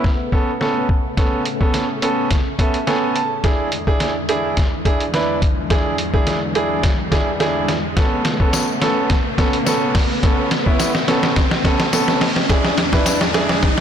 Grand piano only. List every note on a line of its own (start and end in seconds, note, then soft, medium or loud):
0.32 0.49 B3 medium
0.32 0.49 C#4 medium
0.32 0.49 A4 medium
0.61 0.92 B3 medium
0.61 0.92 C#4 medium
0.61 0.93 A4 medium
1.17 1.41 B3 medium
1.17 1.41 C#4 medium
1.17 1.41 A4 medium
1.60 1.84 B3 medium
1.60 1.84 C#4 medium
1.60 1.84 A4 medium
2.02 2.34 B3 medium
2.02 2.34 C#4 medium
2.02 2.34 A4 medium
2.59 2.75 B3 medium
2.59 2.75 C#4 medium
2.59 2.76 A4 medium
2.59 2.85 E5 medium
2.87 3.19 B3 medium
2.87 3.19 C#4 medium
2.87 3.19 A4 medium
2.87 3.14 G#5 medium
3.16 3.42 A5 medium
3.44 3.68 D4 medium
3.44 3.68 E4 medium
3.44 3.68 G#4 medium
3.87 4.10 D4 medium
3.87 4.10 E4 medium
3.87 4.11 G#4 loud
4.29 4.60 D4 medium
4.29 4.60 E4 medium
4.29 4.61 G#4 medium
4.85 5.02 D4 medium
4.85 5.02 E4 medium
4.85 5.02 G#4 loud
5.13 5.45 D4 medium
5.13 5.45 E4 medium
5.13 5.45 B4 medium
5.70 5.94 D4 medium
5.70 5.94 E4 medium
5.70 5.94 G#4 medium
6.13 6.37 D4 medium
6.13 6.37 E4 medium
6.13 6.37 G#4 medium
6.55 6.87 D4 medium
6.55 6.87 E4 medium
6.55 6.87 G#4 medium
7.12 7.28 D4 medium
7.12 7.28 E4 medium
7.12 7.28 G#4 loud
7.40 7.72 D4 medium
7.40 7.72 E4 medium
7.40 7.72 G#4 medium
7.96 8.20 B3 medium
7.96 8.21 C#4 medium
7.96 8.21 A4 medium
8.40 8.63 B3 medium
8.40 8.63 C#4 medium
8.40 8.63 A4 medium
8.81 9.13 B3 medium
8.81 9.13 C#4 medium
8.81 9.13 A4 medium
9.38 9.55 B3 medium
9.38 9.55 C#4 medium
9.38 9.55 A4 medium
9.66 9.98 B3 medium
9.66 9.98 C#4 medium
9.66 9.98 A4 medium
10.23 10.47 B3 medium
10.23 10.47 C#4 medium
10.23 10.47 A4 medium
10.66 10.90 B3 medium
10.66 10.90 C#4 medium
10.66 10.90 E4 medium
11.08 11.40 B3 medium
11.08 11.40 C#4 medium
11.08 11.40 A4 medium
11.64 11.81 B3 medium
11.64 11.81 C#4 medium
11.64 11.81 A4 medium
11.93 12.24 B3 medium
11.93 12.25 C#4 medium
11.93 12.25 A4 loud
12.49 12.73 D4 medium
12.49 12.73 E4 medium
12.49 12.74 G#4 medium
12.93 13.16 D4 medium
12.93 13.16 E4 medium
12.93 13.16 B4 loud
13.34 13.66 D4 medium
13.34 13.66 E4 medium
13.34 13.66 G#4 medium